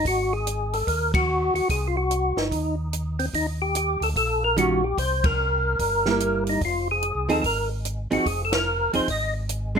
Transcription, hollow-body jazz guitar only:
4.57 4.80 D#3 medium
4.57 4.80 G3 medium
4.57 4.81 C#4 medium
4.57 4.81 F4 medium
6.06 6.59 G3 medium
6.06 6.59 A#3 medium
6.06 6.59 E4 medium
7.29 7.42 F3 medium
7.29 7.42 C4 medium
7.29 7.42 D#4 medium
7.29 7.42 G#4 medium
8.11 8.24 F3 medium
8.11 8.24 C4 medium
8.11 8.24 D#4 soft
8.11 8.25 G#4 medium
8.93 9.06 F3 soft
8.93 9.06 C4 medium
8.93 9.07 D#4 medium
8.93 9.07 G#4 medium
9.75 9.79 G#3 medium
9.75 9.79 C4 medium

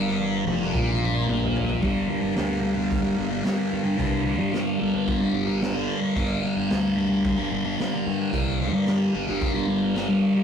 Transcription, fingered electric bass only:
0.00 0.44 G1 medium
0.47 0.73 F1 loud
0.75 1.25 A#1 medium
1.28 1.79 A#1 medium
1.83 2.06 G1 medium
2.24 2.35 G1 medium
2.37 3.07 D2 medium
3.18 3.42 G1 medium
3.73 3.96 G2 medium
4.00 4.41 C2 loud
4.41 4.75 G2 medium
4.81 4.93 G1 medium
4.93 5.87 G1 medium
6.16 6.39 G1 loud
6.56 6.68 G1 medium
6.71 7.41 D2 medium
7.52 7.75 G1 medium
8.07 8.30 G2 medium
8.33 8.74 C2 loud
8.74 9.09 G2 medium
9.14 9.26 G1 medium
9.28 10.22 G1 medium

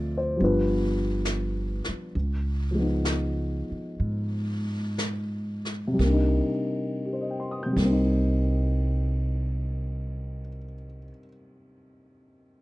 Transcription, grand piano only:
0.00 0.35 F3 soft
0.00 0.39 A3 soft
0.00 0.40 C4 soft
0.00 0.37 F4 medium
0.00 0.37 A4 medium
0.00 0.19 D5 medium
0.00 0.41 E5 medium
0.17 0.43 C5 medium
0.36 2.13 F3 soft
0.36 2.13 G3 soft
0.36 2.14 B3 soft
0.42 2.15 D4 soft
0.42 2.12 F4 soft
0.42 1.24 B4 medium
2.71 5.97 F3 soft
2.71 5.98 G#3 soft
2.78 6.00 B3 soft
2.78 6.02 D#4 soft
5.87 6.37 C3 soft
5.93 6.40 G3 soft
6.00 6.43 A#3 soft
6.06 6.46 D4 soft
6.12 6.49 D#4 soft
7.06 10.40 G4 soft
7.13 10.48 C5 soft
7.21 10.56 D#5 soft
7.30 10.65 G5 soft
7.40 10.74 C6 soft
7.51 10.86 D#6 soft
7.63 11.04 C3 soft
7.63 10.97 G6 soft
7.72 11.10 G3 soft
7.79 11.17 A#3 soft
7.85 11.23 C4 soft
7.90 11.29 D#4 soft

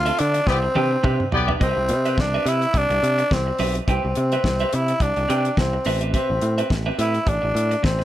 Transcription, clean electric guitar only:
0.06 0.18 C4 medium
0.06 0.18 F4 medium
0.06 0.18 A4 medium
0.06 0.19 E5 loud
0.19 muted clean electric guitar stroke soft
0.34 muted clean electric guitar stroke soft
0.47 muted clean electric guitar stroke soft
0.63 muted clean electric guitar stroke soft
0.75 0.94 D4 medium
0.75 0.91 G4 medium
0.75 0.90 B4 medium
0.75 0.91 G5 medium
0.91 muted clean electric guitar stroke soft
1.03 1.22 D4 loud
1.03 1.19 G4 medium
1.03 1.19 B4 medium
1.03 1.18 E5 loud
1.19 muted clean electric guitar stroke soft
1.32 muted clean electric guitar stroke soft
1.48 1.59 D4 medium
1.48 1.59 G4 medium
1.48 1.59 B4 medium
1.48 1.60 E5 medium
1.60 1.81 C4 medium
1.60 1.76 G4 medium
1.60 1.76 B4 medium
1.60 1.75 E5 medium
1.76 muted clean electric guitar stroke soft
1.89 muted clean electric guitar stroke soft
2.05 2.17 C4 medium
2.05 2.17 G4 medium
2.05 2.17 B4 medium
2.05 2.17 E5 medium
2.18 muted clean electric guitar stroke soft
2.34 2.46 C4 medium
2.34 2.46 G4 medium
2.34 2.47 B4 medium
2.34 2.47 E5 medium
2.47 2.62 C4 medium
2.47 2.62 G4 medium
2.47 2.62 B4 medium
2.47 2.62 E5 medium
2.63 muted clean electric guitar stroke soft
2.75 muted clean electric guitar stroke soft
2.91 muted clean electric guitar stroke soft
3.18 muted clean electric guitar stroke medium
3.31 muted clean electric guitar stroke soft
3.47 muted clean electric guitar stroke soft
3.59 3.78 C4 medium
3.59 3.75 G4 medium
3.59 3.74 B4 medium
3.59 3.74 E5 medium
3.75 muted clean electric guitar stroke medium
3.88 4.06 C4 medium
3.88 4.04 G4 medium
3.88 4.04 B4 medium
3.88 4.04 G5 loud
4.05 muted clean electric guitar stroke soft
4.17 muted clean electric guitar stroke soft
4.33 4.44 C4 medium
4.33 4.44 G4 medium
4.33 4.44 B4 medium
4.33 4.44 E5 medium
4.45 muted clean electric guitar stroke soft
4.60 4.72 C4 medium
4.60 4.72 G4 medium
4.60 4.72 B4 medium
4.60 4.73 E5 medium
4.73 muted clean electric guitar stroke soft
4.90 muted clean electric guitar stroke soft
5.01 muted clean electric guitar stroke soft
5.17 muted clean electric guitar stroke soft
5.29 5.48 C4 medium
5.29 5.45 G4 medium
5.29 5.45 B4 medium
5.29 5.45 G5 medium
5.46 muted clean electric guitar stroke soft
5.58 muted clean electric guitar stroke soft
5.73 muted clean electric guitar stroke soft
5.86 6.01 C4 medium
5.86 6.00 G4 medium
5.86 6.00 B4 medium
5.86 6.00 E5 loud
6.01 6.12 C4 medium
6.01 6.13 G4 medium
6.01 6.13 B4 medium
6.01 6.13 E5 medium
6.13 6.32 C4 medium
6.13 6.29 G4 medium
6.13 6.29 B4 loud
6.13 6.29 E5 loud
6.30 muted clean electric guitar stroke soft
6.42 muted clean electric guitar stroke soft
6.58 6.69 C4 medium
6.58 6.70 G4 medium
6.58 6.70 B4 medium
6.58 6.70 E5 medium
6.70 muted clean electric guitar stroke soft
6.86 6.97 C4 medium
6.86 6.98 G4 medium
6.86 6.98 B4 medium
6.86 6.98 E5 medium
6.99 7.14 C4 medium
6.99 7.14 G4 medium
6.99 7.13 B4 medium
6.99 7.13 E5 medium
7.14 muted clean electric guitar stroke soft
7.26 muted clean electric guitar stroke soft
7.42 muted clean electric guitar stroke soft
7.71 muted clean electric guitar stroke soft
7.83 muted clean electric guitar stroke soft
7.99 muted clean electric guitar stroke soft

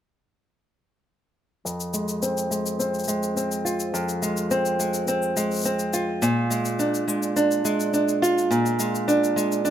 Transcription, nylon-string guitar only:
1.65 3.92 F2 medium
1.93 2.50 G#3 soft
2.22 2.78 C4 medium
2.50 3.07 G#3 soft
2.79 3.35 C4 medium
3.08 4.22 G#3 medium
3.37 4.50 C4 soft
3.65 5.93 F4 medium
3.94 6.22 F2 medium
4.22 4.79 G#3 medium
4.51 5.07 C4 medium
4.79 5.36 G#3 soft
5.08 5.64 C4 medium
5.36 6.50 G#3 medium
5.65 6.28 C4 medium
5.93 8.22 F4 medium
6.22 8.49 A#2 medium
6.50 7.07 G#3 medium
6.79 7.35 D4 medium
7.08 7.64 G#3 medium
7.36 7.92 D4 medium
7.65 8.79 G#3 medium
7.94 9.07 D4 medium
8.22 9.70 F4 medium
8.51 9.70 A#2 medium
8.79 9.36 G#3 medium
9.08 9.64 D4 medium
9.36 9.70 G#3 soft
9.65 9.70 D4 medium

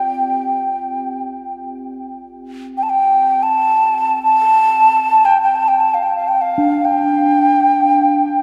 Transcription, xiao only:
0.00 1.22 G5 medium
2.77 2.84 G5 medium
2.83 2.91 A5 medium
2.89 3.44 G5 medium
3.43 4.23 A5 medium
4.23 5.27 A5 medium
5.25 5.42 G5 medium
5.42 5.57 G5 medium
5.56 5.70 A5 medium
5.68 5.82 G5 medium
5.80 5.96 A5 medium
5.94 6.05 F5 medium
6.03 6.15 G5 medium
6.16 6.29 F5 medium
6.28 6.43 G5 medium
6.42 6.86 F5 medium
6.85 8.43 G5 medium

